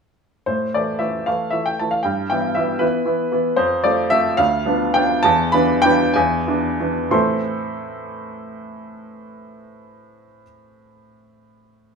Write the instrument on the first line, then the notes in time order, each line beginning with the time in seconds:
grand piano
0.46 A2 C5
0.74 E3 A3 E4 D5
0.99 E3 A3 E4 E5
1.26 E3 A3 E4 F5
1.50 E3 A3 E4 E5
1.66 G5
1.79 E3 A3 E4 A5
1.91 F5
2.03 G2 G5
2.30 E3 B3 E4 G5
2.55 E3 B3 E4 E5
2.79 E3 B3 E4 B4
3.05 E3 B3 E4
3.32 E3 B3 E4
3.56 F2 C5
3.84 F3 A3 C4 D5
4.10 F3 A3 C4 E5
4.37 D2 F5
4.66 F3 B3 D4
4.94 F3 B3 D4 G5
5.23 E2 A5
5.52 E3 B3 D4 B5
5.82 E3 B3 D4 G5
6.14 E2 G#5
6.47 E3 B3 D4
6.80 E3 B3 D4
7.11 A2 E3 C4 E4 A4 C5 C6